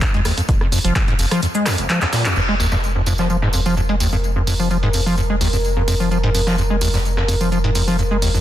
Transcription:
0.02 F2, kick, snare, clap, closed hi-hat, shaker
0.14 F2 G#3, closed hi-hat
0.25 D#2, cross-stick, open hi-hat, tambourine, shaker
0.37 F2, closed hi-hat, tambourine
0.49 F1, kick, closed hi-hat, tambourine, shaker
0.61 F2, cross-stick
0.72 F2, open hi-hat, tambourine, shaker
0.84 F1 F3, closed hi-hat, tambourine
0.96 kick, cross-stick, snare, clap, closed hi-hat, tambourine, shaker
1.08 G#2, closed hi-hat
1.19 F1 F2, open hi-hat, tambourine, shaker
1.31 F3, cross-stick, closed hi-hat, tambourine
1.42 F2, closed hi-hat, tambourine, shaker
1.55 G#3, shaker
1.66 F2, cross-stick, snare, clap, open hi-hat, tambourine, shaker
1.78 F1, closed hi-hat, tambourine
1.89 F3, clap, closed hi-hat, tambourine, shaker
2.02 F2, snare, clap, shaker
2.13 A#2, snare, open hi-hat, tambourine, shaker
2.25 F2, snare, clap, closed hi-hat, tambourine, shaker
2.36 F1 F2 A#4, crash, tambourine, shaker
2.49 G#3, closed hi-hat
2.60 D#2, open hi-hat, tambourine, shaker
2.72 F2, snare, tambourine
2.83 tambourine, shaker
2.95 F2
3.06 F2, open hi-hat, tambourine
3.18 F3, snare, tambourine
3.30 F3, tambourine, shaker
3.42 G#2, snare
3.53 F2, open hi-hat, tambourine, shaker
3.66 F3, tambourine
3.77 F2, tambourine, shaker
3.89 G#3, closed hi-hat
4.00 D#2, open hi-hat, tambourine, shaker
4.12 F2, tambourine
4.24 tambourine, shaker
4.36 F2
4.47 F2, open hi-hat, tambourine, shaker
4.59 F3, tambourine
4.71 F3, tambourine, shaker
4.83 G#2, closed hi-hat
4.93 F2, open hi-hat, tambourine, shaker
5.06 F3, tambourine
5.17 F2, tambourine, shaker
5.30 G#3
5.41 D#2, open hi-hat, tambourine, shaker
5.53 F2, tambourine
5.64 tambourine, shaker
5.77 F2
5.88 F2, open hi-hat, tambourine, shaker
6.00 F3, tambourine
6.11 F3, tambourine, shaker
6.24 G#2, closed hi-hat
6.34 F2, open hi-hat, tambourine, shaker
6.47 F3, snare, tambourine
6.58 F2, tambourine, shaker
6.70 G#3
6.81 D#2, open hi-hat, tambourine, shaker
6.94 F2, snare, tambourine
7.05 tambourine, shaker
7.17 F2, snare
7.28 F2, open hi-hat, tambourine, shaker
7.41 F3, tambourine
7.52 F3, tambourine, shaker
7.64 G#2, closed hi-hat
7.75 F2, open hi-hat, tambourine, shaker
7.88 F3, tambourine
7.99 F2, tambourine, shaker
8.11 G#3
8.22 D#2, open hi-hat, tambourine, shaker
8.34 F2, tambourine

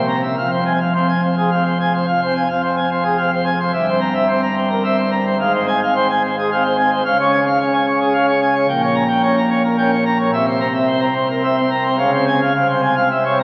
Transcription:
Already playing: C2 C3
0.00 C4
0.09 A#5
0.23 E5
0.38 F1 F2 F5
0.51 C5
0.56 C4
0.66 G#5
0.81 F5
0.94 C4 C5
1.09 G#5
1.23 C5
1.38 G#4
1.51 C4 F5
1.65 C5
1.80 G#5
1.94 C5
2.08 F1 F2 F5
2.22 C5
2.27 C4
2.36 G#5
2.49 F5
2.63 C4 C5
2.77 G#5
2.92 C5
3.04 G#4
3.18 C4 F5
3.32 C5
3.46 G#5
3.60 C5
3.73 G1 G2 E5
3.87 C5
3.92 C4
4.01 A#5
4.15 E5
4.29 C4 C5
4.42 A#5
4.56 C5
4.70 A#4
4.84 C4 E5
4.98 C5
5.12 A#5
5.26 C5
5.40 G#1 G#2 F5
5.54 C5
5.59 C4
5.68 G#5
5.82 F5
5.95 C4 C5
6.11 G#5
6.24 C5
6.38 G#4
6.52 C4 F5
6.65 C5
6.78 G#5
6.92 C5
7.05 C#2 C#3 F5
7.19 C#4 C#5
7.32 G#5
7.46 F5
7.60 C#4 C#5
7.74 G#5
7.86 C#5
8.00 G#4
8.14 C#4 F5
8.28 C#5
8.42 G#5
8.55 C#5
8.69 A#1 A#2 G5
8.83 C#4 C#5
8.95 A#5
9.08 G5
9.23 C#4 C#5
9.37 A#5
9.50 C#5
9.64 A#4
9.78 C#4 G5
9.91 C#5
10.06 A#5
10.19 C#5
10.33 C2 C3 E5
10.47 C5
10.52 C4
10.61 A#5
10.74 E5
10.88 C4 C5
11.01 A#5
11.15 C5
11.30 A#4
11.43 C4 E5
11.57 C5
11.71 A#5
11.85 C5
11.98 C#2 C#3 F5
12.13 C5
12.18 C4
12.28 G#5
12.42 F5
12.55 C2 C3 F5
12.69 C5
12.74 C4
12.82 G#5
12.97 F5
13.11 C2 C3 E5
13.25 C#5
13.30 C4
13.40 A#5

